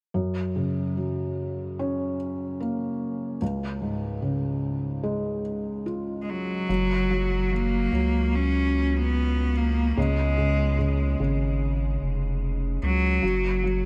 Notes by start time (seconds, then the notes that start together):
0.14 F#2
0.56 C#3
0.97 F#3
1.79 C#4
2.60 A#3
3.42 C#2
3.82 G#2
4.22 C#3
5.03 G#3
5.86 F4
6.22 G#3
6.30 F#3
6.69 F#1 F#3
7.10 F#3
7.52 F#3 A#3
7.92 C#2 F#3
8.35 C#4
8.97 B3
9.57 A#3
9.97 C#2 C#3 G#3
10.38 C#3
10.79 C#3
11.20 G#1 C#3
12.02 F1
12.83 C#2 F#3
13.23 F#1 F#3
13.63 F#3